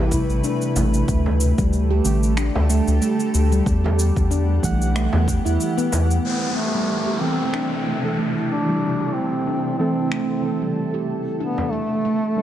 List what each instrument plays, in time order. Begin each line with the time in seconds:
Already playing: analog synth bass A1, ambient pad C3 E3 A3 E4 B4, handpan G4
0.10 synth keys C3 A3 E4, kick, shaker
0.29 analog synth bass A1, shaker
0.44 handpan D4, shaker
0.62 shaker
0.76 analog synth bass A1, handpan A3, frame drum, shaker
0.94 shaker
1.08 analog synth bass D2, ambient pad D3 G3 A3 G4 A4, handpan A3, kick, shaker
1.26 frame drum
1.40 shaker
1.58 analog synth bass D2, handpan G3, kick, shaker
1.73 shaker
1.91 handpan G4
2.04 analog synth bass A1, synth keys D3 A3 G4, shaker
2.23 shaker
2.37 handpan D4, finger snap, shaker
2.55 analog synth bass D2, frame drum
2.70 handpan A3, shaker
2.88 analog synth bass D2, shaker
3.02 handpan A3, shaker
3.20 shaker
3.34 analog synth bass D2, shaker
3.52 handpan G3, shaker
3.66 analog synth bass E2, ambient pad E3 B3 G4 F#5, kick, shaker
3.84 handpan G4, frame drum
3.99 shaker
4.16 analog synth bass E2, kick, shaker
4.31 handpan D4, shaker
4.63 analog synth bass B1, synth keys E3 G3 F#5, handpan A3, kick, shaker
4.82 shaker
4.95 handpan A3, finger snap, shaker
5.13 analog synth bass E2, frame drum
5.28 kick, shaker
5.45 analog synth bass E2, handpan E4, shaker
5.60 shaker
5.78 handpan B3, shaker
5.92 analog synth bass E2, frame drum, shaker
6.11 shaker
6.24 ambient pad C3 E3 A3 E4 A4, handpan A3, duduk B3, downlifter
6.56 duduk A3
6.75 handpan G3
7.07 handpan G4
7.20 synth keys E3 C4 A4, duduk C4
7.54 handpan D4, finger snap
7.86 handpan A3
8.03 synth keys E3 C4 A4
8.18 handpan A3
8.49 duduk D4
8.68 handpan G3
9.00 handpan G4
9.14 duduk C4
9.47 handpan D4
9.79 synth keys E3 C4 A4, handpan A3, duduk C4
10.11 handpan A3, finger snap
10.42 synth keys E3 C4
10.46 synth keys A4
10.62 handpan G3
10.94 handpan G4
11.40 ambient pad D3 G3, duduk B3, handpan D4
11.58 frame drum
11.72 duduk A3, handpan A3
12.05 handpan A3
12.36 synth keys G3 D4 A4